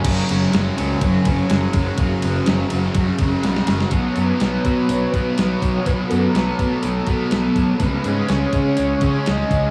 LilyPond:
<<
  \new Staff \with { instrumentName = "Soft synth lead" } { \time 4/4 \key fis \dorian \tempo 4 = 124 r1 | r1 | r8 b'4. cis''8 b'4 cis''8 | b'8 a'4. a'4 a'4 |
b'4 cis''4 cis''4 dis''4 | }
  \new Staff \with { instrumentName = "Distorted electric guitar" } { \clef bass \time 4/4 \key fis \dorian <fis, cis fis>8 <cis fis>8 <fis, cis fis>8 <cis fis>8 <fis, cis fis>8 <fis, cis fis>8 <fis, cis fis>8 <cis fis>8 | <fis, cis fis>8 <cis fis>8 <fis, cis fis>8 <cis fis>8 <fis, cis fis>8 <fis, cis fis>8 <fis, cis fis>8 <cis fis>8 | <b, fis b>8 <fis b>8 <b, fis b>8 <fis b>4 <fis b>8 <b, fis b>4 | <b, fis b>8 <fis b>8 <b, fis b>8 <fis b>4 <fis b>8 <b, fis b>4 |
<cis gis cis'>8 <gis cis'>8 <cis gis cis'>8 <gis cis'>4 <gis cis'>8 <cis gis cis'>4 | }
  \new Staff \with { instrumentName = "Fingered electric bass" } { \clef bass \time 4/4 \key fis \dorian fis,,8 fis,,8 fis,,8 cis,8 fis,,8 fis,,8 fis,,8 fis,,8 | fis,,8 fis,,8 fis,,8 fis,,8 fis,8 fis,,8 b,,8 fis,,8 | b,,8 fis,8 b,,8 b,8 b,,8 b,8 b,,8 b,,8 | b,,8 fis,8 b,,8 b,8 b,,8 b,8 b,,8 b,,8 |
cis,8 gis,8 cis,8 cis8 cis,8 cis8 cis,8 cis,8 | }
  \new DrumStaff \with { instrumentName = "Drums" } \drummode { \time 4/4 <cymc bd cymr>8 cymr8 <cymr sn>8 cymr8 <bd cymr>8 <bd cymr>8 <cymr sn>8 <bd cymr>8 | <bd cymr>8 cymr8 <cymr sn>8 cymr8 <bd cymr>8 <bd cymr>8 <cymr sn>16 sn16 <cymr sn>16 sn16 | <hho bd>8 hho8 <hho sn>8 <hho bd>8 hho8 <hho bd>8 <hho sn>8 <hho bd>8 | <hho bd>8 hho8 <hho sn>8 <hho bd>8 hho8 <hho bd>8 <hho sn>8 <hho bd>8 |
<hho bd>8 hho8 <hho sn>8 <hho bd>8 hho8 <hho bd>8 <hho sn>8 <hho bd>8 | }
>>